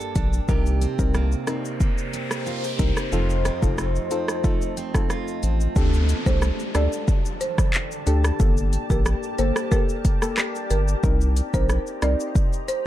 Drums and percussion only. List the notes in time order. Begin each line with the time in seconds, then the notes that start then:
0.00 shaker
0.15 kick, closed hi-hat, shaker
0.33 shaker
0.49 kick, shaker
0.66 shaker
0.82 closed hi-hat, shaker
0.99 kick, shaker
1.14 cross-stick, shaker
1.32 shaker
1.47 cross-stick, closed hi-hat, shaker
1.65 shaker
1.80 kick, shaker
1.98 shaker
2.13 closed hi-hat, shaker
2.31 cross-stick, shaker
2.46 shaker
2.64 shaker
2.79 kick, closed hi-hat, shaker
2.97 cross-stick, shaker
3.12 shaker
3.30 shaker
3.45 cross-stick, closed hi-hat, shaker
3.63 kick, shaker
3.78 cross-stick, shaker
3.96 shaker
4.11 closed hi-hat, shaker
4.28 cross-stick, shaker
4.44 kick, shaker
4.62 shaker
4.77 closed hi-hat, shaker
4.94 kick, cross-stick, shaker
5.10 cross-stick, shaker
5.28 shaker
5.43 closed hi-hat, shaker
5.61 shaker
5.76 kick, shaker
5.94 shaker
6.09 closed hi-hat, shaker
6.26 kick, shaker
6.42 cross-stick, shaker
6.59 shaker
6.75 cross-stick, closed hi-hat, shaker
6.93 shaker
7.08 kick, shaker
7.25 shaker
7.41 closed hi-hat, shaker
7.58 kick, cross-stick, shaker
7.74 clap, shaker
7.92 shaker
8.07 closed hi-hat, shaker
8.24 cross-stick, shaker
8.40 kick, shaker
8.57 shaker
8.73 closed hi-hat, shaker
8.90 kick, shaker
9.06 cross-stick, shaker
9.23 shaker
9.38 closed hi-hat, shaker
9.56 cross-stick, shaker
9.72 kick, shaker
9.89 shaker
10.05 kick, closed hi-hat, shaker
10.22 cross-stick, shaker
10.38 cross-stick, clap, shaker
10.55 shaker
10.70 closed hi-hat, shaker
10.88 shaker
11.03 kick, shaker
11.21 shaker
11.37 closed hi-hat, shaker
11.54 kick, shaker
11.69 cross-stick, shaker
11.87 shaker
12.02 cross-stick, closed hi-hat, shaker
12.20 shaker
12.35 kick, shaker
12.53 shaker
12.68 closed hi-hat, shaker